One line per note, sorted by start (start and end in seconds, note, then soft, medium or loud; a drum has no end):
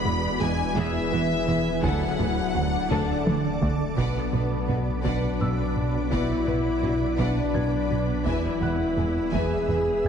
0.00 1.85 E1 medium
0.00 0.41 B3 loud
0.00 1.83 B3 medium
0.00 0.37 E4 medium
0.00 1.83 E4 medium
0.00 1.83 G#4 medium
0.00 1.83 B4 medium
0.00 0.37 E5 medium
0.00 0.39 B5 loud
0.00 0.40 B5 loud
0.00 1.80 B5 medium
0.04 0.12 E1 medium
0.04 0.13 E2 medium
0.04 0.26 E2 medium
0.04 0.13 E3 medium
0.04 0.26 G#3 medium
0.04 0.13 B3 medium
0.04 taiko mid medium
0.40 0.48 E1 medium
0.40 0.49 E2 medium
0.40 0.62 E2 medium
0.40 0.76 G#3 medium
0.40 0.48 G#3 medium
0.40 0.62 G#3 medium
0.40 0.49 E4 medium
0.40 0.76 G#5 medium
0.40 0.77 G#5 loud
0.75 0.84 E1 medium
0.75 0.84 E2 medium
0.75 0.98 E2 loud
0.75 1.81 E3 medium
0.75 0.98 E3 loud
0.75 1.09 B3 medium
0.75 1.09 G#4 medium
0.75 1.81 E5 medium
0.75 1.84 E5 loud
1.12 1.20 E1 medium
1.12 1.20 E2 medium
1.12 1.34 E3 medium
1.12 1.20 E3 medium
1.12 1.33 B3 medium
1.12 1.20 B3 medium
1.47 1.56 E1 medium
1.47 1.56 E2 medium
1.47 1.69 E3 medium
1.47 1.56 G#3 medium
1.47 1.69 B3 medium
1.47 1.56 E4 medium
1.83 3.97 D1 medium
1.83 1.91 D2 medium
1.83 2.05 D2 loud
1.83 1.91 D2 medium
1.83 2.05 D3 medium
1.83 3.62 F#3 medium
1.83 3.98 A3 medium
1.83 2.16 D4 medium
1.83 3.98 D4 medium
1.83 2.16 A4 medium
1.83 3.98 A4 medium
1.83 3.97 D5 medium
1.83 3.58 F#5 loud
1.83 3.62 F#5 medium
1.83 3.94 G#5 soft
1.83 taiko medium
2.19 2.41 D2 medium
2.19 2.27 D2 medium
2.19 2.28 D2 soft
2.19 2.40 F#3 medium
2.19 2.27 F#3 medium
2.19 2.27 D4 medium
2.19 taiko mid medium
2.54 2.76 D2 medium
2.54 2.63 D2 medium
2.54 2.64 D2 medium
2.54 2.76 F#3 medium
2.54 2.63 A3 medium
2.54 2.63 F#4 medium
2.90 2.99 D2 medium
2.90 3.12 D2 medium
2.90 3.11 D3 medium
2.90 3.24 D4 medium
2.90 3.24 A4 medium
2.90 3.94 A4 soft
2.90 3.94 A5 medium
2.90 taiko low-mid medium
3.26 3.34 D2 medium
3.26 3.35 D2 medium
3.26 3.48 D3 medium
3.26 3.34 F#3 medium
3.26 3.47 A3 medium
3.26 3.34 D4 medium
3.26 taiko high medium
3.61 3.70 D2 medium
3.61 3.70 D2 soft
3.61 3.83 D3 medium
3.61 3.83 A3 medium
3.61 3.70 A3 medium
3.61 3.70 F#4 soft
3.61 taiko low medium
3.96 4.06 B1 medium
3.96 8.28 B1 medium
3.96 4.18 B2 medium
3.96 4.06 B2 medium
3.96 8.22 F#3 medium
3.96 5.00 B3 medium
3.96 4.19 B3 medium
3.96 10.08 B3 medium
3.96 4.30 B4 medium
3.96 10.08 B4 medium
3.96 4.31 D5 medium
3.96 8.22 D5 medium
3.96 4.31 F#5 medium
3.96 taiko medium
4.33 4.42 B1 soft
4.33 4.54 B2 medium
4.33 4.42 B2 soft
4.33 4.41 B4 soft
4.33 4.55 B4 medium
4.33 4.42 D5 soft
4.33 taiko mid soft
4.68 4.77 B1 soft
4.68 4.90 B2 medium
4.68 4.77 B2 soft
4.68 4.90 D4 medium
4.68 4.76 F#4 soft
4.68 4.76 B4 soft
4.68 4.77 B4 soft
4.68 taiko mid medium
5.03 5.13 B1 medium
5.03 5.26 B2 medium
5.03 5.13 B2 medium
5.03 5.26 B3 medium
5.03 6.11 D4 medium
5.03 5.37 B4 medium
5.03 5.37 D5 medium
5.03 5.38 F#5 medium
5.03 taiko medium
5.39 5.49 B1 soft
5.39 5.62 B2 medium
5.39 5.49 B2 soft
5.39 5.48 B4 medium
5.39 5.62 B4 medium
5.39 5.49 D5 soft
5.39 7.51 E6 medium
5.39 taiko mid medium
5.76 5.97 B2 medium
5.76 taiko mid soft
6.10 6.20 B1 medium
6.10 6.33 B2 medium
6.10 6.20 B2 medium
6.10 6.33 B3 medium
6.10 7.16 E4 medium
6.10 7.18 E4 medium
6.10 6.45 B4 medium
6.10 6.45 D5 medium
6.10 6.46 F#5 medium
6.10 taiko medium
6.47 6.56 B1 soft
6.47 6.68 B2 medium
6.47 6.56 B2 soft
6.47 6.55 B4 soft
6.47 6.69 B4 medium
6.47 6.55 D5 soft
6.47 taiko mid soft
6.82 6.91 B1 soft
6.82 7.05 B2 medium
6.82 6.92 B2 soft
6.82 7.05 D4 medium
6.82 6.91 F#4 soft
6.82 6.90 B4 soft
6.82 6.91 B4 soft
6.82 taiko mid soft
7.17 7.27 B1 medium
7.17 7.27 B2 medium
7.17 7.41 B2 medium
7.17 7.40 B3 medium
7.17 8.26 D4 medium
7.17 8.24 D4 medium
7.17 7.51 B4 medium
7.17 7.51 D5 medium
7.17 7.52 F#5 medium
7.17 taiko medium
7.54 7.63 B1 soft
7.54 7.76 B2 medium
7.54 7.63 B2 soft
7.54 7.62 B4 soft
7.54 7.76 B4 medium
7.54 7.62 D5 soft
7.54 9.65 G#6 soft
7.54 taiko mid medium
7.90 8.12 B2 medium
7.90 taiko mid soft
8.25 10.08 E1 medium
8.25 8.34 E1 medium
8.25 8.47 E2 medium
8.25 8.34 E2 medium
8.25 8.47 E3 medium
8.25 10.08 G#3 medium
8.25 9.31 E4 medium
8.25 9.33 E4 medium
8.25 8.59 B4 medium
8.25 8.59 E5 medium
8.25 10.08 E5 medium
8.25 8.59 G#5 medium
8.25 taiko medium
8.61 8.70 E1 soft
8.61 8.83 E2 medium
8.61 8.70 E2 soft
8.61 8.83 E4 medium
8.61 8.69 B4 soft
8.61 8.69 E5 soft
8.61 10.08 F#5 soft
8.61 10.08 F#6 medium
8.61 taiko mid soft
8.96 9.05 E1 soft
8.96 9.05 E2 soft
8.96 9.19 E2 medium
8.96 9.19 G#3 medium
8.96 9.06 G#4 soft
8.96 9.04 B4 soft
8.96 9.06 B4 soft
8.96 taiko mid soft
9.31 9.41 E1 medium
9.31 9.54 E2 medium
9.31 9.42 E2 medium
9.31 9.54 E3 medium
9.31 10.08 G#4 medium
9.31 9.67 B4 medium
9.31 9.66 E5 medium
9.31 9.66 G#5 medium
9.31 taiko medium
9.68 9.77 E1 soft
9.68 9.90 E2 medium
9.68 9.77 E2 soft
9.68 9.90 E4 medium
9.68 9.77 B4 soft
9.68 9.77 E5 soft
9.68 taiko mid soft
10.04 10.08 E2 medium
10.04 taiko mid soft